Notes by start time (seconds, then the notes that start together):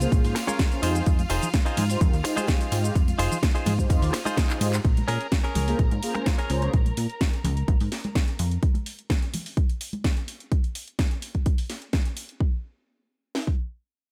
Already playing: F4 F5
0.00 A#3 C#4 F4 G#4 C5, closed hi-hat, tambourine, shaker
0.12 A#1 A#3 C#4 F4, muted clean electric guitar stroke, kick, closed hi-hat, ride, tambourine, shaker
0.24 G#2 A#3 C#4 F4 G#4 C5, open hi-hat, tambourine, shaker
0.35 muted clean electric guitar stroke, snare, open hi-hat, ride, tambourine
0.47 C#4 F4 G#4 A#4, closed hi-hat, tambourine, high conga, shaker
0.59 kick, snare, closed hi-hat, ride, tambourine, shaker
0.71 A#3 C#4 F4 G#4 C5, closed hi-hat, tambourine, shaker
0.82 F2 G#3 D#4 F4 G4 G#4 C5, open hi-hat, ride, tambourine
0.95 closed hi-hat, tambourine, shaker
1.06 F2, kick, closed hi-hat, ride, tambourine, shaker
1.19 closed hi-hat, tambourine, high conga, shaker
1.30 F1 D#4 F4 G#4 C5, open hi-hat, ride, tambourine
1.42 closed hi-hat, tambourine, low conga, shaker
1.54 kick, snare, closed hi-hat, ride, tambourine, shaker
1.65 D#4 F4 G#4 C5, closed hi-hat, tambourine, shaker
1.77 G#2, open hi-hat, ride, tambourine, high conga, low conga
1.90 G#3 D#4 F4 G4 C5, open hi-hat, tambourine, shaker
2.01 F2 G#3 D#4 F4 G4 A#4, muted clean electric guitar stroke, kick, closed hi-hat, ride, tambourine, shaker
2.13 D#2, closed hi-hat, tambourine, shaker
2.24 G#3 D#4 F4 G4 C5, muted clean electric guitar stroke, open hi-hat, ride, tambourine
2.36 G#3 D#4 F4 G4 G#4 C5, closed hi-hat, tambourine, high conga, shaker
2.47 kick, snare, closed hi-hat, ride, tambourine, shaker
2.61 closed hi-hat, tambourine, shaker
2.72 G#2 G#3 D#4 F4 G4 C5, open hi-hat, ride, tambourine
2.84 closed hi-hat, tambourine, shaker
2.95 F2, kick, closed hi-hat, ride, tambourine, shaker
3.08 closed hi-hat, tambourine, high conga, shaker
3.19 F1 D#4 F4 G#4 C5, open hi-hat, ride, tambourine
3.32 closed hi-hat, tambourine, low conga, shaker
3.43 kick, snare, closed hi-hat, ride, tambourine, shaker
3.54 D#4 F4 G#4 C5, closed hi-hat, tambourine, shaker
3.66 G#2, open hi-hat, ride, tambourine, high conga, low conga
3.79 G#3 D#4 F4 G4 C5, kick, closed hi-hat, tambourine, shaker
3.89 F2 G#3 D#4 F4 G4 C5, muted clean electric guitar stroke, kick, closed hi-hat, ride, tambourine, shaker
4.02 D#2 G#3 D#4 F4 G4 C5, open hi-hat, tambourine, shaker
4.13 muted clean electric guitar stroke, snare, open hi-hat, ride, tambourine
4.25 D#4 F4 G#4 C5, closed hi-hat, tambourine, high conga, shaker
4.37 kick, snare, closed hi-hat, ride, tambourine, shaker
4.49 G#3 D#4 F4 G4 C5, clap, closed hi-hat, tambourine, shaker
4.61 G#2 G#3 D#4 F4 G4 C5, open hi-hat, ride, tambourine
4.74 clap, closed hi-hat, tambourine, shaker
4.85 A#1 A#4 A#5, kick, closed hi-hat, tambourine
4.97 closed hi-hat, high conga
5.08 A#2 C#4 G#4 A#4, open hi-hat, tambourine
5.21 closed hi-hat, tambourine
5.32 kick, snare, closed hi-hat, tambourine
5.44 C#4 G#4 A#4, closed hi-hat, tambourine
5.55 C#2, open hi-hat, tambourine, high conga, low conga
5.68 A#3 C#4 F4 G#4 C5, open hi-hat, tambourine
5.79 A#1 A#3 C#4 F4 G#4 A#4, kick, closed hi-hat, tambourine
5.91 G#2, closed hi-hat, tambourine
6.03 A#3 C#4 F4 G#4 C5, open hi-hat, tambourine
6.15 A#3 C#4 F4 G#4 C5, muted clean electric guitar stroke, closed hi-hat, tambourine, high conga
6.26 muted clean electric guitar stroke, kick, snare, closed hi-hat
6.38 C#4 G#4 A#4, closed hi-hat, tambourine
6.50 C#2 A#3 C#4 F4 G#4 C5, open hi-hat, tambourine
6.62 muted clean electric guitar stroke, closed hi-hat, tambourine
6.73 A#1, kick, closed hi-hat, tambourine
6.86 closed hi-hat, high conga
6.97 A#2, open hi-hat, tambourine
7.10 closed hi-hat, tambourine
7.21 kick, snare, closed hi-hat
7.33 closed hi-hat, tambourine
7.44 C#2, open hi-hat, tambourine, high conga, low conga
7.57 closed hi-hat
7.68 A#1, kick, closed hi-hat
7.80 G#2, open hi-hat
7.92 snare, open hi-hat
8.04 closed hi-hat, tambourine, high conga
8.15 kick, snare, closed hi-hat
8.28 closed hi-hat
8.39 F2, open hi-hat
8.51 closed hi-hat
8.63 kick, closed hi-hat
8.74 closed hi-hat, high conga
8.86 open hi-hat, tambourine
8.99 closed hi-hat, tambourine
9.10 kick, snare, closed hi-hat
9.22 closed hi-hat
9.33 open hi-hat, tambourine, high conga, low conga
9.46 open hi-hat
9.57 kick, closed hi-hat
9.70 closed hi-hat
9.81 open hi-hat, tambourine
9.93 closed hi-hat, tambourine, high conga
10.04 kick, snare, closed hi-hat
10.17 closed hi-hat
10.28 open hi-hat, tambourine
10.40 closed hi-hat, tambourine
10.52 kick, closed hi-hat
10.64 closed hi-hat
10.75 open hi-hat
10.88 closed hi-hat
10.99 kick, snare, closed hi-hat
11.11 closed hi-hat
11.22 open hi-hat
11.35 kick, closed hi-hat
11.46 kick, closed hi-hat
11.58 open hi-hat
11.70 snare, open hi-hat
11.82 closed hi-hat
11.93 kick, snare, closed hi-hat
12.05 closed hi-hat
12.17 open hi-hat
12.29 closed hi-hat
12.40 kick
13.35 snare
13.47 kick